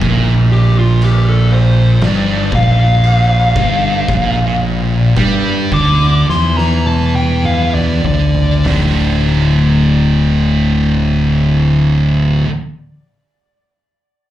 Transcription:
0.01 1.98 A#1 medium
0.01 2.00 A#2 loud
0.01 kick medium
0.01 crash medium
0.52 0.76 G4 medium
0.79 1.02 F4 medium
1.02 1.27 G4 medium
1.02 crash medium
1.29 1.52 A4 medium
1.53 2.01 C5 medium
2.01 2.49 G1 medium
2.01 2.51 G2 loud
2.01 2.52 D5 medium
2.01 snare loud
2.01 crash medium
2.52 3.52 A#1 loud
2.52 3.54 A#2 loud
2.52 4.60 F5 medium
2.52 kick medium
3.04 crash medium
3.56 4.05 G1 medium
3.56 4.08 G2 loud
3.56 kick loud
4.08 5.12 A#1 medium
4.08 5.15 A#2 loud
4.08 kick loud
4.08 crash medium
5.17 5.68 G2 medium
5.17 5.71 G3 loud
5.17 kick loud
5.17 crash medium
5.72 6.24 D2 loud
5.72 6.27 D3 medium
5.72 6.27 D6 loud
5.72 kick loud
6.28 8.01 E2 medium
6.28 8.02 E3 loud
6.28 6.57 C6 medium
6.28 snare medium
6.57 6.85 A#5 medium
6.57 snare medium
6.86 7.14 A5 medium
6.86 high tom medium
7.15 7.44 G5 medium
7.15 high tom medium
7.44 7.74 F5 loud
7.44 mid tom medium
7.74 8.03 D5 medium
7.74 mid tom medium
8.04 8.62 D2 medium
8.04 8.64 D3 medium
8.04 8.64 D5 medium
8.04 floor tom loud
8.35 floor tom medium
8.64 12.43 D1 medium
8.64 12.45 D2 medium
8.64 12.47 A2 medium
8.64 snare medium
8.64 floor tom loud
8.64 open hi-hat medium
8.69 12.49 D3 medium

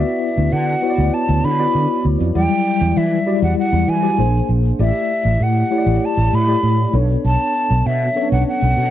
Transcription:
0.00 0.70 B3 medium
0.00 0.70 E4 medium
0.00 0.70 F#4 medium
0.00 0.71 D5 medium
0.00 0.54 E5 medium
0.37 0.48 D2 medium
0.52 0.74 D3 medium
0.52 1.15 F#5 medium
0.82 1.49 B3 medium
0.82 1.49 E4 medium
0.82 1.49 F#4 medium
0.82 0.89 C#5 medium
0.90 1.52 D5 medium
0.98 1.09 D2 medium
1.14 1.46 A5 medium
1.29 1.39 D2 medium
1.44 1.65 D3 medium
1.44 2.05 B5 medium
1.59 2.25 B3 medium
1.59 2.25 E4 medium
1.59 2.26 F#4 medium
1.59 2.26 D5 medium
1.75 1.85 D3 medium
2.05 2.15 D2 medium
2.20 2.31 F2 medium
2.35 2.46 E2 medium
2.35 3.15 F#3 medium
2.35 3.15 G3 medium
2.35 3.15 E4 medium
2.35 3.15 D5 medium
2.35 2.99 G5 loud
2.81 2.92 E2 medium
2.96 3.18 E3 medium
2.96 3.43 E5 medium
3.26 3.93 G3 medium
3.26 3.93 E4 medium
3.26 3.93 F#4 medium
3.26 3.93 D5 medium
3.42 3.53 E2 medium
3.42 3.57 F#5 medium
3.59 3.91 F#5 medium
3.72 3.83 E2 medium
3.88 4.09 E3 medium
3.88 4.50 G#5 medium
4.02 4.18 G3 medium
4.02 4.18 E4 medium
4.02 4.18 F#4 medium
4.02 4.18 D5 medium
4.18 4.40 A#1 medium
4.18 4.71 A#3 medium
4.18 4.72 D4 medium
4.18 4.72 G#4 medium
4.18 4.72 C5 medium
4.49 4.70 A#1 medium
4.79 4.90 A1 loud
4.79 5.59 A3 medium
4.79 5.59 E4 medium
4.79 5.59 G4 medium
4.79 5.60 D5 medium
4.79 5.44 E5 medium
5.25 5.36 A1 medium
5.40 5.62 A2 medium
5.40 6.07 F#5 medium
5.70 6.37 A3 medium
5.70 6.37 E4 medium
5.70 6.38 G4 medium
5.70 5.78 C#5 medium
5.78 6.41 D5 medium
5.86 5.97 A1 medium
6.05 6.36 A5 medium
6.17 6.28 A1 medium
6.33 6.54 A2 medium
6.33 6.95 B5 medium
6.48 6.94 A3 medium
6.48 6.94 E4 medium
6.48 6.94 G4 medium
6.48 6.94 D5 medium
6.63 6.84 A2 medium
6.93 7.15 B1 loud
6.93 8.00 B3 medium
6.93 8.00 D4 medium
6.93 8.01 A4 medium
6.93 8.01 C#5 medium
7.24 7.35 B1 medium
7.24 7.88 A5 medium
7.70 7.81 B1 medium
7.86 8.07 B2 medium
7.86 8.32 E5 medium
8.15 8.82 B3 medium
8.15 8.23 C#4 soft
8.15 8.83 A4 medium
8.15 8.83 C#5 medium
8.22 8.86 D4 medium
8.32 8.42 B1 medium
8.32 8.46 F#5 medium
8.48 8.90 F#5 medium
8.62 8.73 B1 medium
8.77 8.90 B2 loud

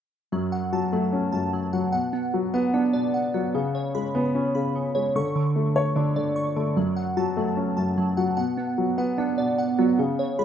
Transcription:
0.32 1.32 F#2 medium
0.32 0.92 F#3 medium
0.52 1.72 F#5 medium
0.72 1.72 F#3 medium
0.72 1.31 A5 medium
0.93 1.52 F#3 medium
0.93 1.93 A3 medium
1.13 1.93 C#4 medium
1.32 1.93 F#2 medium
1.32 1.93 A5 medium
1.53 1.93 F#3 medium
1.73 1.93 F#3 medium
1.73 1.91 F#5 medium
1.92 2.93 B2 medium
1.92 2.53 F#5 loud
2.13 2.73 B3 medium
2.34 3.33 F#3 medium
2.54 3.54 B3 loud
2.54 3.13 F#5 medium
2.74 3.33 B3 medium
2.74 3.54 D4 medium
2.93 3.54 B2 medium
2.93 3.54 D5 medium
3.14 3.54 F#5 medium
3.34 3.54 F#3 medium
3.34 3.54 B3 medium
3.54 4.54 C#3 medium
3.54 4.13 C#3 medium
3.75 4.94 C#5 medium
3.95 4.94 G#3 medium
3.95 4.54 B5 loud
4.15 4.74 C#3 medium
4.15 5.15 B3 loud
4.35 5.15 C#4 medium
4.55 5.15 C#3 medium
4.55 5.15 B5 medium
4.75 5.16 C#3 medium
4.95 5.15 G#3 medium
4.95 5.15 C#5 medium
5.16 6.15 D3 medium
5.16 5.74 C#6 loud
5.36 5.95 D3 medium
5.56 6.55 A3 medium
5.76 6.77 C#5 medium
5.76 6.35 C#6 medium
5.96 6.55 D3 medium
5.96 6.76 D4 medium
6.16 6.77 D3 medium
6.16 6.77 D5 medium
6.36 6.76 C#6 medium
6.56 6.77 D3 medium
6.56 6.76 A3 medium
6.76 7.76 F#2 medium
6.76 7.36 F#3 medium
6.96 8.16 F#5 medium
7.17 8.16 F#3 medium
7.17 7.76 A5 loud
7.37 7.96 F#3 medium
7.37 8.38 A3 medium
7.57 8.38 C#4 medium
7.77 8.38 F#2 medium
7.77 8.37 A5 medium
7.98 8.38 F#3 medium
8.17 8.38 F#3 medium
8.17 8.36 F#5 medium
8.37 9.37 B2 medium
8.37 8.97 F#5 loud
8.57 9.17 B3 medium
8.78 9.77 F#3 medium
8.98 9.99 B3 loud
8.98 9.57 F#5 medium
9.18 9.77 B3 medium
9.18 9.99 D4 medium
9.38 9.99 B2 medium
9.38 9.98 D5 medium
9.58 9.99 F#5 medium
9.78 9.99 F#3 medium
9.78 9.99 B3 medium
9.99 10.45 C#3 medium
10.19 10.45 C#5 medium
10.39 10.45 G#3 medium
10.39 10.45 B5 loud

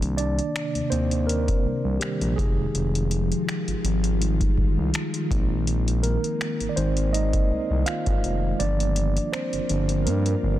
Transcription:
0.00 0.40 C2 loud
0.00 2.35 C3 medium
0.00 0.88 D#3 medium
0.00 8.56 D#3 medium
0.00 0.88 A#3 soft
0.00 2.36 A#3 medium
0.00 0.18 D4 medium
0.00 closed hi-hat medium
0.17 0.88 D4 medium
0.17 0.93 D5 loud
0.17 closed hi-hat medium
0.39 closed hi-hat soft
0.56 finger snap loud
0.56 closed hi-hat medium
0.75 0.82 D#2 medium
0.75 closed hi-hat soft
0.90 1.49 D#2 medium
0.90 1.26 C4 medium
0.90 1.29 C5 loud
0.90 closed hi-hat medium
1.11 closed hi-hat soft
1.27 1.98 A#3 medium
1.27 2.03 A#4 medium
1.27 closed hi-hat medium
1.48 kick medium
1.48 closed hi-hat soft
1.65 1.73 C2 soft
1.85 1.98 C2 medium
2.00 2.36 G3 medium
2.00 2.37 G4 medium
2.00 finger snap loud
2.00 closed hi-hat medium
2.21 2.34 A#1 medium
2.21 closed hi-hat medium
2.36 2.67 F1 loud
2.36 5.28 F3 medium
2.36 3.81 G#3 medium
2.36 2.88 D#4 medium
2.36 5.28 F4 medium
2.36 2.88 G4 medium
2.36 3.79 G#4 medium
2.36 kick loud
2.36 closed hi-hat medium
2.75 3.32 F1 loud
2.75 closed hi-hat medium
2.95 closed hi-hat medium
3.11 closed hi-hat medium
3.32 closed hi-hat soft
3.49 finger snap loud
3.49 closed hi-hat medium
3.68 3.74 G#1 soft
3.68 closed hi-hat soft
3.84 4.42 G#1 medium
3.84 closed hi-hat medium
4.04 closed hi-hat soft
4.20 4.54 G3 soft
4.20 4.54 G#3 soft
4.20 4.54 D#4 medium
4.20 closed hi-hat medium
4.41 kick medium
4.41 closed hi-hat soft
4.58 4.66 C2 soft
4.58 kick loud
4.78 4.91 C2 medium
4.94 finger snap loud
4.94 closed hi-hat medium
5.14 closed hi-hat medium
5.30 6.17 A#1 loud
5.30 5.80 G#3 medium
5.30 8.57 G#3 medium
5.30 8.57 A#3 medium
5.30 5.81 C4 medium
5.30 5.81 D#4 medium
5.30 kick loud
5.30 closed hi-hat medium
5.67 closed hi-hat medium
5.88 closed hi-hat medium
6.03 6.67 A#3 medium
6.03 6.72 A#4 medium
6.03 closed hi-hat medium
6.24 closed hi-hat soft
6.41 finger snap loud
6.41 closed hi-hat medium
6.60 6.67 G#1 medium
6.60 closed hi-hat soft
6.69 6.76 D5 medium
6.76 7.35 G#1 medium
6.76 7.10 G#3 soft
6.76 7.12 C4 medium
6.76 7.10 D#4 medium
6.76 7.14 C5 medium
6.76 closed hi-hat medium
6.97 closed hi-hat soft
7.13 7.83 D#4 medium
7.13 7.89 D#5 loud
7.13 closed hi-hat medium
7.33 kick medium
7.33 closed hi-hat soft
7.51 7.58 C2 soft
7.70 7.84 C2 medium
7.86 8.56 F4 medium
7.86 8.62 F5 loud
7.86 finger snap loud
7.86 closed hi-hat medium
8.06 8.20 G#1 loud
8.06 kick medium
8.06 closed hi-hat medium
8.24 8.52 F1 medium
8.24 closed hi-hat medium
8.60 9.18 G1 loud
8.60 9.66 F3 medium
8.60 10.59 G3 medium
8.60 9.66 A#3 medium
8.60 9.30 D4 medium
8.60 10.59 F4 medium
8.60 10.59 A#4 medium
8.60 9.35 D5 loud
8.60 closed hi-hat medium
8.80 closed hi-hat medium
8.96 closed hi-hat medium
9.17 closed hi-hat soft
9.33 10.03 C4 medium
9.33 10.08 C5 medium
9.33 finger snap loud
9.33 closed hi-hat medium
9.53 9.60 G1 soft
9.53 closed hi-hat soft
9.69 10.08 G1 medium
9.69 10.03 F3 medium
9.69 10.03 A#3 soft
9.69 10.03 D4 medium
9.69 closed hi-hat medium
9.89 closed hi-hat soft
10.05 10.35 G2 loud
10.05 10.59 A#3 medium
10.05 10.59 A#4 medium
10.05 closed hi-hat medium
10.26 closed hi-hat soft
10.43 10.59 G1 medium

